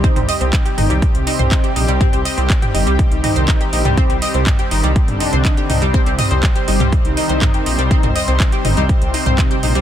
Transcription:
<<
  \new Staff \with { instrumentName = "Synth pluck" } { \time 4/4 \key c \minor \tempo 4 = 122 c'16 c'16 ees''16 c'16 r16 g'16 ees'16 g16 r8 ees'16 c''16 ees'16 g'16 ees'16 g16 | c'16 c'16 ees''16 c'16 r16 g'16 ees'16 g16 r8 ees'16 c''16 ees'16 g'16 ees'16 g16 | c'16 c'16 ees''16 c'16 r16 g'16 ees'16 g16 r8 ees'16 c''16 ees'16 g'16 ees'16 g16 | c'16 c'16 ees''16 c'16 r16 g'16 ees'16 g16 r8 ees'16 c''16 ees'16 g'16 ees'16 g16 |
c'16 c'16 ees''16 c'16 r16 g'16 ees'16 g16 r8 ees'16 c''16 ees'16 g'16 ees'16 g16 | }
  \new Staff \with { instrumentName = "Analog synth pad" } { \time 4/4 \key c \minor << { g'1~ | g'1~ | g'1 | c''1~ |
c''1 | } \\ { <c g c'>1~ | <c g c'>1~ | <c g c'>1~ | <c g c'>1~ |
<c g c'>1 | } >> }
  \new Staff \with { instrumentName = "Analog polysynth" } { \time 4/4 \key c \minor <ees ees'>8 r4 <ees ees'>8 r16 <c c'>4. r16 | <g g'>8 r4 <g g'>8 r16 <ees ees'>4. r16 | <g g'>8 r4 <ees ees'>8 r16 <d d'>4. r16 | <g g'>8 r4 <g g'>8 r16 <ees ees'>4. r16 |
<ees ees'>8 r4 <ees ees'>8 r16 <c c'>4. r16 | }
  \new Staff \with { instrumentName = "Detuned saw bass" } { \clef bass \time 4/4 \key c \minor r16 c,16 r16 c,16 r8 g,,16 c,16 r16 c,16 r16 c,16 r8 bes,,16 c,16 | r16 c,16 r16 c,16 r8 g,,16 c,16 r16 c,16 r16 c,16 r8 bes,,16 c,16 | r16 c,16 r16 c,16 r8 g,,16 c,16 r16 g,,16 r16 c,16 r8 c,16 c,16 | r16 c,16 r16 c,16 r8 g,,16 c,16 r16 c,16 r16 c,16 r8 bes,,16 c,16 |
r16 c,16 r16 c,16 r8 g,,16 c,16 r16 c,16 r16 c,16 r8 bes,,16 c,16 | }
  \new DrumStaff \with { instrumentName = "Drums" } \drummode { \time 4/4 <hh bd>16 <hh toml>16 hho16 hh16 <hc hh bd>16 hh16 <hho toml>16 hh16 <hh bd>16 hh16 hho16 <hh toml>16 <hc hh bd>16 hh16 hho16 hh16 | <hh bd toml>16 hh16 hho16 hh16 <hc hh bd>16 <hh toml>16 hho16 hh16 <hh bd>16 hh16 <hho toml>16 hh16 <hc hh bd>16 hh16 hho16 <hh toml>16 | <hh bd>16 hh16 hho16 hh16 <hc hh bd toml>16 hh16 hho16 hh16 <hh bd>16 <hh toml>16 hho16 hh16 <hc hh bd>16 hh16 <hho toml>16 hh16 | <hh bd>16 hh16 <hho toml>16 hh16 <hc hh bd>16 hh16 hho16 <hh toml>16 <hh bd>16 hh16 hho16 hh16 <hc hh bd toml>16 hh16 hho16 hh16 |
<hh bd>16 <hh toml>16 hho16 hh16 <hc hh bd>16 hh16 <hho toml>16 hh16 <hh bd>16 hh16 hho16 <hh toml>16 <hc hh bd>16 hh16 hho16 hh16 | }
>>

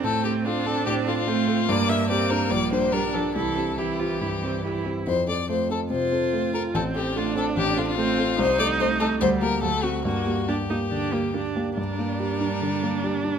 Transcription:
<<
  \new Staff \with { instrumentName = "Violin" } { \time 4/4 \key f \major \tempo 4 = 144 a'8 g'8 f'8 a'8 g'8 f'16 f'4~ f'16 | d''8 e''8 d''8 bes'8 d''8 c''8 bes'8 a'8 | a'4 g'2~ g'8 r8 | c''8 d''8 c''8 a'8 c''4. bes'8 |
a'8 g'8 f'8 a'8 g'8 f'16 f'4~ f'16 | \key g \minor c''8 d''8 c''8 a'8 c''8 bes'8 a'8 fis'8 | fis'4 g'2~ g'8 r8 | bes'1 | }
  \new Staff \with { instrumentName = "Grand piano" } { \time 4/4 \key f \major a,8 <c' a'>8 <f' a'>8 <c' a'>8 a,8 <c' a'>8 <f' a'>8 <c' a'>8 | g,8 <d' bes'>8 <g' bes'>8 <d' bes'>8 bes,,8 <d' bes'>8 <g' bes'>8 <d' bes'>8 | c,8 <c' g'>8 <e' g'>8 <c' g'>8 g,8 <c' g'>8 <e' g'>8 <c' g'>8 | f,8 <c' a'>8 <f' a'>8 <c' a'>8 c8 <c' a'>8 <f' a'>8 <c' a'>8 |
a,,8 <c' a'>8 <f' a'>8 <c' a'>8 a,,8 <c' a'>8 <f' a'>8 <c' a'>8 | \key g \minor c,8 <a a'>8 <ees' a'>8 <a a'>8 d,8 <bes g'>8 d,8 <c' fis'>8 | g,8 <bes g'>8 <d' g'>8 <bes g'>8 d8 <bes g'>8 <d' g'>8 <bes g'>8 | g,8 bes8 g'8 d'8 d8 bes8 g'8 d'8 | }
  \new Staff \with { instrumentName = "Viola" } { \time 4/4 \key f \major c'4 d'2 c'4 | bes4 c'4 bes4 d'4 | e'4 e'8 f'8 e'8 c'8 e'4 | r2 f'2 |
c'4 d'2 c'4 | \key g \minor ees'2 g4 a4 | bes4 d'8 ees'8 d'8 bes8 d'4 | d'1 | }
  \new Staff \with { instrumentName = "Cello" } { \time 4/4 \key f \major a4 c'4 c'4 a4 | bes4 bes4 g4 g8 f8 | e4 e2~ e8 r8 | r4 a4 r4 a4 |
r4 a4 r4 a4 | \key g \minor r4 a4 g4 fis4 | r4 bes4 r4 bes4 | g1 | }
>>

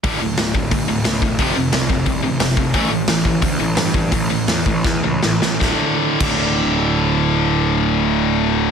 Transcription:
<<
  \new Staff \with { instrumentName = "Distorted electric guitar" } { \clef bass \time 4/4 \key d \minor \tempo 4 = 170 <d, a, d>8 <d, a,>8 <d, a,>8 <d, a,>8 <d, a,>8 <d, a,>8 <d, a,>8 <d, a,>8 | <f, c f>8 <f, c>8 <f, c>8 <f, c>8 <f, c>8 <f, c>8 <f, c>8 <f, c>8 | <a, e a>8 <a, e>8 <a, e>8 <a, e>8 <a, e>8 <a, e>8 <a, e>8 <a, e>8 | <a, e>8 <a, e>8 <a, e>8 <a, e>8 <a, e>8 <a, e>8 <a, e>8 <a, e>8 |
<d, a, d>8 r4 <d, a, d>2~ <d, a, d>8~ | <d, a, d>1 | }
  \new Staff \with { instrumentName = "Overdriven electric guitar" } { \clef bass \time 4/4 \key d \minor <d, a, d>8 <d, a,>8 <d, a,>8 <d, a,>8 <d, a,>8 <d, a,>8 <d, a,>8 <d, a,>8 | <f, c f>8 <f, c>8 <f, c>8 <f, c>8 <f, c>8 <f, c>8 <f, c>8 <f, c>8 | <a, e a>8 <a, e>8 <a, e>8 <a, e>8 <a, e>8 <a, e>8 <a, e>8 <a, e>8 | <a, e>8 <a, e>8 <a, e>8 <a, e>8 <a, e>8 <a, e>8 <a, e>8 <a, e>8 |
<d, a, d>8 r4 <d, a, d>2~ <d, a, d>8~ | <d, a, d>1 | }
  \new Staff \with { instrumentName = "Picked electric bass" } { \clef bass \time 4/4 \key d \minor d,,8 d,,8 d,,8 d,,8 g,,8 d,,8 cis,8 e,,8 | f,,8 f,,8 c,8 f,,8 c,8 a,,8 f,,8 f,,8 | a,,8 a,,8 a,,8 a,,8 d,8 a,,8 g,8 g,8 | a,,8 a,,8 e,8 a,,8 e,8 cis,8 a,,8 a,,8 |
d,,8 r4 d,,2~ d,,8~ | d,,1 | }
  \new DrumStaff \with { instrumentName = "Drums" } \drummode { \time 4/4 <hho bd>4 <hho sn>8 bd8 <hho bd>4 <hho sn>8 bd8 | <hho bd>4 <hho sn>8 bd8 <hho bd>4 <hho sn>8 bd8 | <hho bd>4 <hho sn>8 bd8 <hho bd>4 <hho sn>8 bd8 | <hho bd>4 <hho sn>8 bd8 <bd sn>4 sn8 sn8 |
<bd sn>4 r8 <cymc bd>8 r4 r4 | r4 r4 r4 r4 | }
>>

